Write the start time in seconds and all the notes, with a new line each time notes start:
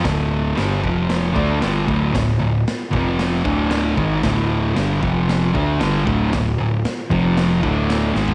0.04 D1 D2 A2 D3, kick, snare, open hi-hat
0.55 G1 G2 D3 G3, snare, open hi-hat
0.82 F1 F2 C3 F3, kick
1.09 snare, open hi-hat
1.34 D2 D3 A3 D4, kick
1.60 G1 G2 D3 G3, snare, open hi-hat
1.86 D1 D2 A2 D3, kick
2.13 D1 D2 A2, kick, snare, open hi-hat
2.39 D1 D2 A2
2.67 snare, open hi-hat
2.92 F1 F2 C3 F3, kick
3.19 snare, open hi-hat
3.44 D1 D2 A2 D3, kick
3.70 snare, open hi-hat
3.96 G#1 G#2 D#3 G#3, kick
4.23 D1 D2 A2 D3, kick, snare, open hi-hat
4.75 G1 G2 D3 G3, snare, open hi-hat
5.01 F1 F2 C3 F3, kick
5.29 snare, open hi-hat
5.54 D2 D3 A3 D4, kick
5.79 G1 G2 D3 G3, snare, open hi-hat
6.05 D1 D2 A2 D3, kick
6.32 D1 D2 A2, kick, snare, open hi-hat
6.58 D1 D2 A2
6.85 snare, open hi-hat
7.10 F1 F2 C3 F3, kick
7.37 snare, open hi-hat
7.61 D1 D2 A2 D3, kick
7.90 snare, open hi-hat
8.13 G#1 G#2 D#3 G#3, snare
8.28 floor tom